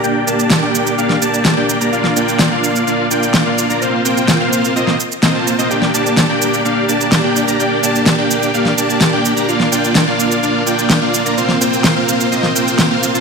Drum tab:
SH |x-xxx-xxx-xxx-xx|x-xxx-xxx-xxx-xx|x-xxx-xxx-xxx-xx|x-xxx-xxx-xxx-xx|
SD |----o----o--o---|-o--o-------o---|----o----o--o---|-o--o-------o---|

SH |x-xxx-xxx-xxx-xx|x-xxx-xxx-xxx-xx|x-xxx-xxx-xxx-xx|
SD |----o----o--o---|-o--o-------o---|-o--o----o--o---|